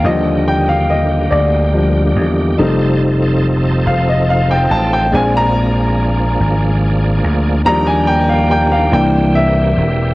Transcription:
X:1
M:6/8
L:1/16
Q:3/8=47
K:Eb
V:1 name="Upright piano"
e2 g f e2 d6- | d4 z2 f e f g =a g | a b6 z4 z | b a g f g f g2 =e4 |]
V:2 name="Upright piano" clef=bass
[D,F,G,]6 z2 [F,G,D]2 z2 | [G,=A,E]12 | [A,CD]2 z8 z2 | [F,G,D]2 z4 [=E,B,D]6 |]
V:3 name="Tonewheel organ"
[D,B,FG]12 | [F,CE=A]12 | [F,B,DA]12 | [E,B,DFG]6 [=E,B,CG]6 |]
V:4 name="Slap bass" clef=bass
E,,6 D,,4 _F,,2 | F,,,6 F,,,4 =A,,,2 | B,,,6 A,,,4 D,,2 | E,,6 C,,4 =E,,,2 |]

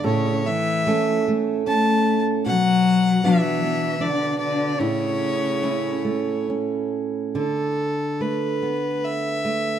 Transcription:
X:1
M:3/4
L:1/16
Q:1/4=74
K:D
V:1 name="Fiddle"
c2 e4 z2 a3 z | f4 e4 d2 d2 | c8 z4 | A4 B4 e4 |]
V:2 name="Steel-string acoustic guitar"
[A,,A]4 [A,CA]2 A,2 C4 | [B,,F]4 [B,DF]2 B,2 D4 | [A,,E]4 [A,CE]2 A,2 C4 | D,4 A,2 B,4 A,2 |]
V:3 name="Cello" clef=bass
C,2 E,4 z2 A,3 z | F,4 E,4 D,2 D,2 | C,8 z4 | z12 |]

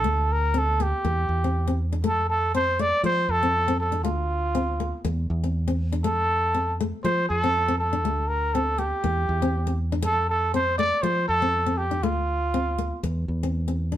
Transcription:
X:1
M:4/4
L:1/16
Q:"Swing 16ths" 1/4=120
K:F
V:1 name="Trumpet"
A2 B2 A2 G8 z2 | A2 A2 c2 d2 c2 A4 A2 | F8 z8 | A6 z2 c2 A4 A2- |
A2 B2 A2 G8 z2 | A2 A2 c2 d2 c2 A4 G2 | F8 z8 |]
V:2 name="Nylon-string guitar"
A,2 z2 C2 B,2 B,2 z C2 C2 D | A,2 z2 C2 A,2 A,2 z C2 C2 D | A,2 z2 C2 B,2 B,2 z C2 C2 D | A,2 z2 C2 A,2 A,2 z C2 C2 D |
A,2 z2 C2 B,2 B,2 z C2 C2 D | z4 C2 A,2 A,2 z C2 C2 D | A,2 z2 C2 B,2 z3 C2 C2 D |]
V:3 name="Fingered electric bass" clef=bass
D,,8 E,,2 E,,6 | F,,8 F,2 F,,6 | D,,8 E,,2 E,,6 | F,,8 F,2 F,,6 |
D,,8 E,,2 E,,6 | F,,8 F,2 F,,6 | D,,8 E,,2 E,,6 |]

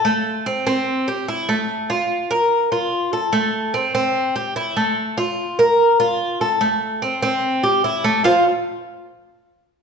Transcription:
X:1
M:4/4
L:1/8
Q:1/4=146
K:F
V:1 name="Cuban tres"
A,2 C C2 G E A,- | A, F2 B2 F2 A | A,2 C C2 G E A,- | A, F2 B2 F2 A |
A,2 C C2 G E A, | [Fcf] z6 z |]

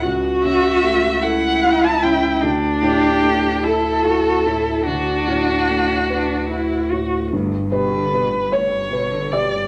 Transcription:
X:1
M:6/8
L:1/16
Q:3/8=50
K:Glyd
V:1 name="Violin"
z2 e4 f3 a g2 | z2 G4 A6 | F8- F2 z2 | z2 B4 c4 d2 |]
V:2 name="Felt piano"
z12 | z12 | z12 | z2 B4 c4 d2 |]
V:3 name="Felt piano"
C,,2 C,2 A,2 A2 E2 C,2 | D,,2 A,,2 A,2 A2 E2 A,,2 | D,,2 A,,2 A,2 B2 F2 A,,2 | G,,2 G2 B4 B2 G2 |]
V:4 name="Cello" clef=bass
F6 E6 | D6 E2 F2 E2 | D6 D2 E2 F2 | D,, G,, B,, D, B,, G,, D,, G,, B,, D, B,, G,, |]
V:5 name="Sub bass" clef=bass
C,,12 | D,,12- | D,,12 | G,,,12 |]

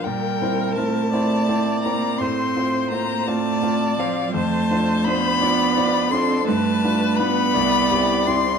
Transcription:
X:1
M:6/8
L:1/8
Q:3/8=56
K:F
V:1 name="Violin"
g2 a3 b | c'2 b a2 f | [K:Ddor] a2 b3 c' | a2 b3 c' |]
V:2 name="Viola"
B3 d3 | c3 d3 | [K:Ddor] c3 d d A | B3 d3 |]
V:3 name="Grand piano"
B,, [CEc] [CEc] [CEc] [CEc] [CEc] | A,, [CFc] [CFc] [CFc] [CFc] [CFc] | [K:Ddor] F,, [DFc] [DFc] [DFc] [DFc] [DFc] | G,, [DFB] [DFB] C,, [CEG] [CEG] |]
V:4 name="Cello"
G,2 A,3 B, | C2 B, A,2 F, | [K:Ddor] A,2 B,3 C | A,2 B,3 C |]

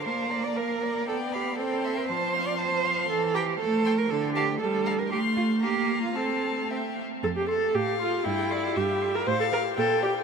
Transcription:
X:1
M:2/4
L:1/16
Q:1/4=118
K:F
V:1 name="Violin"
f2 b2 f2 b2 | g2 =b2 g2 c'2 | a2 c'2 a2 c'2 | z2 b2 z2 c'2 |
z2 a2 z2 b2 | c'4 b4 | a4 g2 z2 | z4 f4 |
g2 d2 e4 | f4 g4 |]
V:2 name="Violin"
B2 d2 B2 d2 | d2 f2 c2 e2 | c2 f2 c2 f2 | z2 g2 z2 g2 |
z2 f2 z2 f2 | f4 f4 | f4 e2 z2 | z2 c'2 z2 c'2 |
z2 c'2 z2 c'2 | z2 f2 z2 d2 |]
V:3 name="Cello"
c3 d B4 | A2 G2 A3 B | c3 d c4 | A2 G2 A3 B |
A2 G2 A3 B | G2 F2 G3 F | A4 z4 | F,,4 A,,4 |
G,,4 G,,4 | A,,4 B,,4 |]
V:4 name="Viola"
B,8 | =B,4 C4 | F,8 | E,4 A,4 |
D,4 G,4 | A,4 B,4 | C4 C2 z2 | A G A2 G2 F2 |
E4 G3 B | c A B2 A2 G2 |]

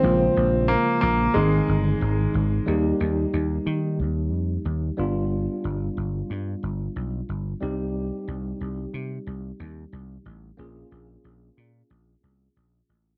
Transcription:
X:1
M:4/4
L:1/16
Q:"Swing 16ths" 1/4=91
K:Ebmix
V:1 name="Tine electric piano"
[D,F,A,B,F]8 [E,A,CEA]8 | [G,B,EG]12- [G,B,EG]2 [G,=B,=DF]2- | [G,=B,=DF]12- [G,B,DF]2 [G,CEG]2- | [G,CEG]12- [G,CEG]2 z2 |
[B,DFA]16 |]
V:2 name="Grand piano"
C4 B,2 B,2 A,6 z2 | z16 | z16 | z16 |
z16 |]
V:3 name="Slap bass" clef=bass
B,,,2 B,,,3 z B,,,2 A,,,2 G,,,2 A,,,2 A,,,2 | E,,2 E,,2 E,,2 E,2 E,,2 F,,2 E,,2 G,,,2- | G,,,2 G,,,2 G,,,2 G,,2 G,,,2 =B,,,2 G,,,2 C,,2- | C,,2 C,,2 C,,2 C,2 C,,2 E,,2 C,,2 =A,,,2 |
B,,,2 B,,,2 B,,,2 B,,2 B,,,2 C,,2 B,,,2 =A,,,2 |]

